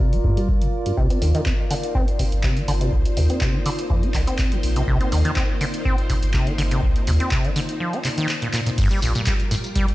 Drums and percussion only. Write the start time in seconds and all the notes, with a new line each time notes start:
0.00 kick
0.13 closed hi-hat
0.24 kick
0.37 closed hi-hat
0.49 kick
0.62 closed hi-hat
0.86 closed hi-hat
0.97 kick
1.10 closed hi-hat
1.22 open hi-hat
1.35 closed hi-hat
1.46 kick, clap
1.71 open hi-hat
1.84 closed hi-hat
1.95 kick
2.08 closed hi-hat
2.19 kick, open hi-hat
2.32 closed hi-hat
2.44 kick, clap
2.57 closed hi-hat
2.68 open hi-hat
2.81 closed hi-hat
2.93 kick
3.05 closed hi-hat
3.17 open hi-hat
3.30 closed hi-hat
3.41 kick, clap
3.66 open hi-hat
3.79 closed hi-hat
3.90 kick
4.03 closed hi-hat
4.14 kick, clap, open hi-hat
4.27 closed hi-hat
4.39 kick, clap, open hi-hat
4.52 closed hi-hat
4.63 open hi-hat
4.76 closed hi-hat
4.88 kick
5.01 closed hi-hat
5.12 open hi-hat
5.25 closed hi-hat
5.36 kick, clap
5.61 open hi-hat
5.74 closed hi-hat
5.85 kick
5.98 closed hi-hat
6.10 kick, open hi-hat
6.23 closed hi-hat
6.34 kick, clap
6.47 closed hi-hat
6.58 open hi-hat
6.71 closed hi-hat
6.83 kick
6.96 closed hi-hat
7.07 open hi-hat
7.20 closed hi-hat
7.31 kick, clap
7.45 closed hi-hat
7.56 open hi-hat
7.69 closed hi-hat
7.93 closed hi-hat
8.05 clap, open hi-hat
8.18 closed hi-hat
8.29 clap, open hi-hat
8.42 closed hi-hat
8.54 clap, open hi-hat
8.67 closed hi-hat
8.78 kick, closed hi-hat, crash, tambourine
8.91 closed hi-hat
9.02 open hi-hat, tambourine
9.15 closed hi-hat, tambourine
9.27 kick, clap, closed hi-hat, tambourine
9.40 closed hi-hat
9.51 open hi-hat, tambourine
9.64 closed hi-hat, tambourine
9.75 kick, closed hi-hat, tambourine
9.88 closed hi-hat